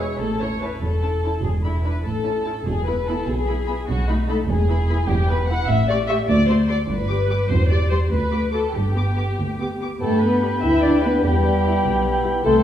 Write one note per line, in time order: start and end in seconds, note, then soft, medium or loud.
0.00 0.20 C#5 medium
0.19 0.69 A1 soft
0.19 0.69 A2 soft
0.19 0.39 A4 soft
0.39 0.48 C#4 soft
0.39 0.47 E4 soft
0.39 0.62 C#5 soft
0.39 0.46 A5 soft
0.62 0.69 C#4 soft
0.62 0.68 E4 soft
0.62 0.82 B4 soft
0.62 0.68 A5 soft
0.81 1.30 E1 soft
0.81 1.30 E2 soft
0.81 1.43 A4 soft
1.02 1.09 C#4 soft
1.02 1.09 E4 soft
1.02 1.09 A5 soft
1.23 1.30 C#4 soft
1.23 1.30 E4 soft
1.23 1.30 A5 soft
1.42 1.91 E1 soft
1.42 1.92 E2 soft
1.42 1.50 G#4 soft
1.64 1.70 D4 soft
1.64 1.71 E4 soft
1.64 1.84 E4 soft
1.64 1.70 B5 soft
1.83 1.91 D4 soft
1.83 1.91 E4 soft
1.83 2.04 B4 soft
1.83 1.91 B5 soft
2.04 2.53 A1 soft
2.04 2.54 A2 soft
2.04 2.65 A4 soft
2.24 2.31 C#4 soft
2.24 2.31 E4 soft
2.24 2.31 A5 soft
2.44 2.52 C#4 soft
2.44 2.52 E4 soft
2.44 2.51 A5 soft
2.66 3.14 E1 medium
2.66 3.15 E2 soft
2.66 2.86 G#4 medium
2.86 2.93 B3 soft
2.86 2.93 E4 soft
2.86 3.07 B4 soft
2.86 2.93 B5 soft
3.07 3.14 B3 soft
3.07 3.14 E4 soft
3.07 3.27 A4 medium
3.07 3.14 B5 soft
3.27 3.75 B1 medium
3.27 3.76 B2 soft
3.27 3.88 G#4 medium
3.47 3.55 B3 soft
3.47 3.54 E4 soft
3.47 3.54 B5 soft
3.67 3.75 B3 soft
3.67 3.75 E4 soft
3.67 3.73 B5 soft
3.88 4.36 B1 medium
3.88 4.36 B2 medium
3.88 4.08 F#4 medium
4.08 4.15 A3 soft
4.08 4.15 D#4 soft
4.08 4.29 D#4 medium
4.08 4.15 B5 soft
4.28 4.35 A3 soft
4.28 4.34 D#4 soft
4.28 4.36 A4 medium
4.28 4.36 B5 soft
4.48 4.96 E1 medium
4.48 4.97 E2 soft
4.48 5.08 G#4 medium
4.68 4.75 B3 soft
4.68 4.75 E4 soft
4.68 4.76 B5 soft
4.88 4.95 B3 soft
4.88 4.95 E4 soft
4.88 4.95 B5 soft
5.07 5.56 E1 medium
5.07 5.56 E2 medium
5.07 5.28 G4 medium
5.28 5.36 B3 soft
5.28 5.36 E4 soft
5.28 5.49 B4 medium
5.28 5.37 B5 soft
5.48 5.56 B3 soft
5.48 5.56 E4 soft
5.48 5.68 F#5 medium
5.48 5.58 B5 soft
5.68 6.15 A1 medium
5.68 6.16 A2 medium
5.68 5.88 E5 medium
5.88 5.95 A3 soft
5.88 5.95 G4 soft
5.88 5.96 D5 medium
5.88 5.96 C#6 soft
6.08 6.16 A3 soft
6.08 6.16 G4 soft
6.08 6.16 E5 medium
6.08 6.15 C#6 soft
6.28 6.76 D2 medium
6.28 6.48 D5 medium
6.48 6.55 A3 soft
6.48 6.55 F#4 soft
6.48 6.68 C5 medium
6.48 6.55 C6 soft
6.68 6.75 A3 soft
6.68 6.75 F#4 soft
6.68 6.77 D5 medium
6.68 6.75 C6 soft
6.89 7.37 G1 medium
6.89 7.37 G2 medium
6.89 7.49 B4 medium
7.09 7.16 G3 soft
7.09 7.16 G4 soft
7.09 7.16 D6 soft
7.29 7.36 G3 soft
7.29 7.36 G4 soft
7.29 7.37 D6 soft
7.49 7.98 E1 medium
7.49 7.99 E2 medium
7.49 7.70 C5 medium
7.68 7.76 G3 soft
7.68 7.77 G4 soft
7.68 7.90 D5 medium
7.68 7.78 C6 soft
7.90 7.98 G3 soft
7.90 7.97 G4 soft
7.90 7.98 C5 medium
7.90 7.98 C6 soft
8.11 8.61 D2 medium
8.11 8.62 D2 soft
8.11 8.53 B4 medium
8.32 8.38 A3 soft
8.32 8.39 F#4 soft
8.32 8.39 D6 soft
8.53 8.61 A3 soft
8.53 8.61 F#4 soft
8.53 8.75 A4 medium
8.53 8.60 D6 soft
8.73 9.25 G1 soft
8.73 9.26 G2 soft
8.73 9.80 G4 medium
8.95 9.02 B3 soft
8.95 9.02 G4 soft
8.95 9.04 D6 soft
9.15 9.23 B3 soft
9.15 9.23 G4 soft
9.15 9.25 D6 soft
9.38 9.88 D2 soft
9.38 9.89 D2 soft
9.60 9.66 B3 soft
9.60 9.67 G4 soft
9.60 9.68 D6 soft
9.80 9.88 B3 soft
9.80 9.87 G4 soft
9.80 9.89 D6 soft
10.01 10.50 G2 medium
10.01 10.21 A3 medium
10.01 10.22 A3 medium
10.01 11.20 B3 soft
10.01 11.26 D4 medium
10.01 10.21 A4 medium
10.01 11.21 G5 soft
10.01 11.20 B5 soft
10.21 10.63 B3 soft
10.21 10.63 B4 medium
10.42 10.58 D4 soft
10.42 10.58 G4 soft
10.42 10.59 B5 soft
10.61 11.12 D2 medium
10.61 10.82 E4 medium
10.61 10.84 E4 medium
10.61 10.83 E5 medium
10.82 11.04 D4 medium
10.82 10.93 D4 medium
10.82 11.03 D5 medium
11.02 11.24 B3 medium
11.02 11.13 B3 medium
11.02 11.19 D4 medium
11.02 11.19 G4 soft
11.02 11.23 B4 medium
11.02 11.20 B5 medium
11.24 11.73 E2 medium
11.24 12.25 G3 medium
11.24 12.24 G3 medium
11.24 12.43 B3 medium
11.24 12.44 E4 medium
11.24 12.23 G4 medium
11.24 12.44 G5 soft
11.24 12.44 B5 soft
11.65 11.80 E4 soft
11.65 11.80 G4 soft
11.65 11.80 B5 soft
11.85 12.33 B1 medium
12.24 12.40 E4 soft
12.24 12.41 G4 medium
12.24 12.40 B5 soft
12.44 12.63 C2 medium
12.44 12.63 A3 medium
12.44 12.55 A3 medium
12.44 12.63 E4 medium
12.44 12.63 A4 medium
12.44 12.63 G5 medium
12.44 12.63 C6 soft